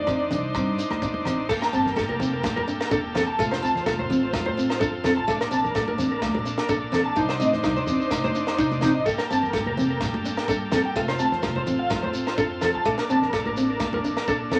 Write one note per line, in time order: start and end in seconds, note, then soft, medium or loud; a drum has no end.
0.00 0.28 F2 medium
0.00 1.46 D4 medium
0.00 1.48 D#4 medium
0.00 1.48 C5 medium
0.00 0.51 D5 medium
0.07 0.22 C4 medium
0.07 kick medium
0.07 cross-stick medium
0.07 low conga medium
0.07 low agogo medium
0.07 shekere medium
0.31 0.53 C2 medium
0.31 0.45 D4 medium
0.31 closed hi-hat soft
0.31 low conga medium
0.31 shekere medium
0.55 0.76 G2 loud
0.55 0.70 C4 medium
0.55 kick medium
0.55 cross-stick medium
0.55 low agogo medium
0.55 shekere medium
0.78 0.93 D4 medium
0.78 closed hi-hat soft
0.78 shekere medium
0.90 1.13 D#2 medium
0.90 cross-stick medium
0.90 high conga medium
0.90 low agogo medium
1.02 1.17 D4 medium
1.02 kick medium
1.02 shekere medium
1.14 high conga medium
1.25 1.47 A1 medium
1.25 1.41 C4 medium
1.25 cross-stick medium
1.25 closed hi-hat medium
1.25 low conga medium
1.25 low agogo medium
1.25 shekere medium
1.49 1.61 G1 medium
1.49 3.37 A#3 medium
1.49 1.65 A#3 loud
1.49 3.37 G4 medium
1.49 1.56 A4 medium
1.49 7.13 A4 medium
1.49 kick medium
1.49 crash medium
1.49 shekere loud
1.62 1.67 A#4 medium
1.62 snare medium
1.62 low agogo medium
1.62 shekere soft
1.73 1.95 G1 loud
1.73 1.87 C4 medium
1.73 1.79 A5 medium
1.73 shekere medium
1.86 1.91 A#4 medium
1.86 snare soft
1.86 low conga medium
1.86 shekere soft
1.96 2.08 G1 loud
1.96 2.10 A#3 medium
1.96 2.03 A4 medium
1.96 kick medium
1.96 snare medium
1.96 high conga medium
1.96 low agogo medium
1.96 shekere medium
2.09 2.41 F1 medium
2.09 2.15 A#4 medium
2.09 high conga medium
2.20 2.34 C4 medium
2.20 low conga medium
2.20 shekere medium
2.33 2.39 A#4 medium
2.43 2.56 A#1 loud
2.43 2.58 A#3 medium
2.43 kick loud
2.43 snare medium
2.43 high conga medium
2.43 low agogo medium
2.43 shekere loud
2.56 2.78 G1 medium
2.56 2.62 A#4 medium
2.56 high conga medium
2.68 2.82 D4 medium
2.68 shekere medium
2.80 2.86 A#4 medium
2.80 snare medium
2.80 low agogo medium
2.80 shekere soft
2.91 3.35 E1 medium
2.91 3.05 D4 loud
2.91 2.98 A4 loud
2.91 kick medium
2.91 shekere loud
3.15 3.29 C4 medium
3.15 3.21 A4 medium
3.15 snare medium
3.15 low conga medium
3.15 low agogo medium
3.15 shekere medium
3.27 3.33 A5 medium
3.38 3.60 F1 medium
3.38 3.54 A3 loud
3.38 5.26 C4 medium
3.38 5.26 F4 medium
3.38 3.45 A4 medium
3.38 kick loud
3.38 shekere loud
3.51 3.57 C5 medium
3.51 snare medium
3.51 low agogo medium
3.51 shekere soft
3.62 3.84 D2 medium
3.62 3.77 C4 medium
3.62 3.69 A5 medium
3.62 shekere medium
3.75 3.81 C5 medium
3.75 snare soft
3.75 low conga medium
3.75 shekere soft
3.86 3.98 F1 loud
3.86 4.01 A#3 medium
3.86 3.93 A4 medium
3.86 kick medium
3.86 snare medium
3.86 high conga medium
3.86 low agogo medium
3.86 shekere loud
3.98 4.30 A1 medium
3.98 4.05 C5 medium
3.98 high conga medium
4.10 4.24 C4 medium
4.10 low conga medium
4.10 shekere medium
4.23 4.28 C5 medium
4.33 4.45 F2 loud
4.33 4.48 A3 medium
4.33 kick medium
4.33 snare medium
4.33 high conga medium
4.33 low agogo medium
4.33 shekere loud
4.46 4.78 A1 loud
4.46 4.52 C5 medium
4.46 high conga medium
4.57 4.71 C4 medium
4.57 shekere medium
4.70 4.75 C5 medium
4.70 snare medium
4.70 low agogo medium
4.70 shekere soft
4.80 5.14 F2 loud
4.80 4.95 D4 medium
4.80 4.87 A4 medium
4.80 kick loud
4.80 shekere loud
5.04 5.18 C4 medium
5.04 5.11 A4 medium
5.04 snare medium
5.04 low conga medium
5.04 low agogo medium
5.04 shekere medium
5.17 5.27 A1 loud
5.17 5.23 A5 medium
5.28 5.40 A#1 loud
5.28 5.42 A3 medium
5.28 7.16 A#3 medium
5.28 9.03 D4 medium
5.28 5.35 A4 loud
5.28 kick medium
5.28 snare soft
5.28 shekere loud
5.41 5.46 A#4 medium
5.41 snare medium
5.41 low agogo medium
5.41 shekere soft
5.51 5.73 A#1 loud
5.51 5.65 C4 medium
5.51 5.58 A5 medium
5.51 shekere medium
5.64 5.70 A#4 medium
5.64 low conga medium
5.64 shekere soft
5.75 5.87 A#1 loud
5.75 5.89 A#3 medium
5.75 5.82 A4 medium
5.75 kick medium
5.75 snare medium
5.75 high conga medium
5.75 low agogo medium
5.75 shekere loud
5.87 6.19 A1 medium
5.87 5.93 A#4 medium
5.87 high conga medium
5.98 6.12 C4 medium
5.98 snare soft
5.98 low conga medium
5.98 shekere medium
6.12 6.17 A#4 medium
6.22 6.34 D2 loud
6.22 6.36 A#3 medium
6.22 kick loud
6.22 snare medium
6.22 high conga medium
6.22 low agogo medium
6.22 shekere loud
6.34 6.57 A#1 loud
6.34 muted clean electric guitar stroke medium
6.34 high conga medium
6.45 6.60 D4 medium
6.45 shekere medium
6.58 6.64 A#4 medium
6.58 snare medium
6.58 low agogo medium
6.58 shekere soft
6.69 7.13 A#1 loud
6.69 6.83 D4 medium
6.69 6.76 A4 medium
6.69 kick medium
6.69 shekere loud
6.92 7.06 C4 medium
6.92 7.00 A4 medium
6.92 snare medium
6.92 low conga medium
6.92 low agogo medium
6.92 shekere medium
7.06 7.11 A5 medium
7.16 7.38 C2 medium
7.16 7.30 A#3 medium
7.16 7.23 D#4 loud
7.16 9.05 D#4 medium
7.16 9.05 C5 medium
7.16 kick medium
7.16 shekere loud
7.29 7.35 C5 medium
7.29 snare medium
7.29 low agogo medium
7.29 shekere soft
7.40 7.62 A2 loud
7.40 7.54 C4 loud
7.40 7.47 D#5 medium
7.40 shekere medium
7.53 7.59 C5 medium
7.53 snare soft
7.53 low conga medium
7.53 shekere soft
7.63 7.76 C2 loud
7.63 7.79 A#3 medium
7.63 7.71 D#4 medium
7.63 kick medium
7.63 snare medium
7.63 high conga medium
7.63 low agogo medium
7.63 shekere loud
7.76 8.09 D#2 medium
7.76 7.82 C5 medium
7.76 high conga medium
7.76 shekere soft
7.87 8.02 C4 medium
7.87 low conga medium
7.87 shekere medium
8.00 8.06 C5 medium
8.00 shekere soft
8.11 8.23 C3 medium
8.11 8.26 A#3 medium
8.11 kick medium
8.11 snare medium
8.11 high conga medium
8.11 low agogo medium
8.11 shekere loud
8.24 8.56 F2 medium
8.24 8.30 C5 medium
8.24 high conga medium
8.24 shekere soft
8.35 8.49 D4 medium
8.35 shekere medium
8.47 8.53 C5 medium
8.47 snare medium
8.47 low agogo medium
8.47 shekere soft
8.58 8.92 C3 medium
8.58 8.73 D4 medium
8.58 8.65 D#4 medium
8.58 kick medium
8.58 shekere loud
8.71 high conga medium
8.71 shekere soft
8.81 8.96 C4 medium
8.81 8.89 D#4 medium
8.81 snare medium
8.81 low conga medium
8.81 low agogo medium
8.81 shekere medium
8.95 9.05 A1 medium
8.95 9.01 D#5 medium
9.06 9.18 G1 medium
9.06 10.94 A#3 medium
9.06 9.21 A#3 medium
9.06 10.94 G4 medium
9.06 9.12 A4 medium
9.06 14.60 A4 medium
9.06 kick medium
9.06 shekere loud
9.18 9.24 A#4 medium
9.18 snare medium
9.18 low agogo medium
9.18 shekere soft
9.30 9.52 G1 loud
9.30 9.45 C4 medium
9.30 9.36 A5 medium
9.30 shekere medium
9.43 9.48 A#4 medium
9.43 low conga medium
9.43 shekere soft
9.53 9.65 G1 loud
9.53 9.68 A#3 medium
9.53 9.60 A4 medium
9.53 kick medium
9.53 snare medium
9.53 high conga medium
9.53 low agogo medium
9.53 shekere loud
9.66 9.98 F1 medium
9.66 9.72 A#4 medium
9.66 high conga medium
9.77 9.92 C4 medium
9.77 low conga medium
9.77 shekere medium
9.90 9.96 A#4 medium
10.01 10.13 A#1 loud
10.01 10.15 A#3 medium
10.01 kick medium
10.01 snare medium
10.01 high conga medium
10.01 low agogo medium
10.01 shekere loud
10.14 10.36 G1 loud
10.14 high conga medium
10.25 10.40 D4 medium
10.25 shekere medium
10.37 10.43 A#4 medium
10.37 snare medium
10.37 low agogo medium
10.37 shekere soft
10.48 10.92 G2 medium
10.48 10.63 D4 medium
10.48 10.55 A4 medium
10.48 kick medium
10.48 shekere loud
10.72 10.87 C4 medium
10.72 10.79 A4 medium
10.72 snare medium
10.72 low conga medium
10.72 low agogo medium
10.72 shekere medium
10.85 10.91 G5 medium
10.95 11.17 F1 medium
10.95 11.10 A3 loud
10.95 12.84 C4 medium
10.95 12.84 F4 medium
10.95 11.03 A4 medium
10.95 kick medium
10.95 snare soft
10.95 shekere medium
11.08 11.14 C5 medium
11.08 snare medium
11.08 low agogo medium
11.08 shekere soft
11.19 11.41 D2 medium
11.19 11.34 C4 medium
11.19 11.26 A5 medium
11.19 shekere medium
11.32 11.38 C5 medium
11.32 snare soft
11.32 low conga medium
11.43 11.55 F1 loud
11.43 11.58 A#3 medium
11.43 muted clean electric guitar stroke medium
11.43 kick medium
11.43 snare medium
11.43 high conga medium
11.43 low agogo medium
11.43 shekere loud
11.56 11.88 A1 medium
11.56 11.62 C5 medium
11.56 high conga medium
11.67 11.81 C4 medium
11.67 low conga medium
11.67 shekere medium
11.79 11.85 F5 medium
11.90 12.02 F2 loud
11.90 12.05 A3 medium
11.90 kick medium
11.90 snare medium
11.90 high conga medium
11.90 low agogo medium
11.90 shekere loud
12.03 12.36 A1 medium
12.03 12.08 C5 loud
12.03 high conga medium
12.13 12.28 C4 medium
12.13 shekere medium
12.27 12.32 C5 medium
12.27 snare medium
12.27 low agogo medium
12.27 shekere soft
12.38 12.71 F2 loud
12.38 12.52 D4 medium
12.38 12.44 A4 medium
12.38 kick medium
12.38 shekere medium
12.61 12.76 C4 medium
12.61 12.68 A4 medium
12.61 snare medium
12.61 low conga medium
12.61 low agogo medium
12.61 shekere medium
12.74 12.85 F2 loud
12.74 12.80 A5 medium
12.85 12.97 A#1 medium
12.85 13.00 A3 loud
12.85 14.60 A#3 medium
12.85 14.60 D4 medium
12.85 12.92 A4 medium
12.85 kick medium
12.85 snare soft
12.85 shekere medium
12.98 13.04 A#4 medium
12.98 snare medium
12.98 low agogo medium
12.98 shekere soft
13.09 13.31 A#1 loud
13.09 13.24 C4 medium
13.09 13.16 A5 medium
13.09 shekere medium
13.22 13.28 A#4 medium
13.22 snare soft
13.22 low conga medium
13.33 13.45 A#1 loud
13.33 13.48 A#3 medium
13.33 13.40 A4 medium
13.33 kick medium
13.33 snare medium
13.33 high conga medium
13.33 low agogo medium
13.33 shekere medium
13.45 13.78 A1 loud
13.45 13.52 A#4 medium
13.45 high conga medium
13.57 13.71 C4 medium
13.57 shekere medium
13.70 13.76 A#4 medium
13.80 13.92 D2 loud
13.80 13.94 A#3 medium
13.80 kick medium
13.80 snare medium
13.80 high conga medium
13.80 low agogo medium
13.80 shekere loud
13.93 14.15 A#1 loud
13.93 13.99 A#4 medium
13.93 high conga medium
14.04 14.19 D4 medium
14.04 shekere medium
14.17 14.23 A#4 medium
14.17 snare medium
14.17 low agogo medium
14.17 shekere soft
14.28 14.60 A#2 loud
14.28 14.42 D4 medium
14.28 14.35 A4 loud
14.28 kick medium
14.28 shekere medium
14.51 14.60 C4 medium
14.51 14.59 A4 medium
14.51 snare medium
14.51 low conga medium
14.51 low agogo medium
14.51 shekere medium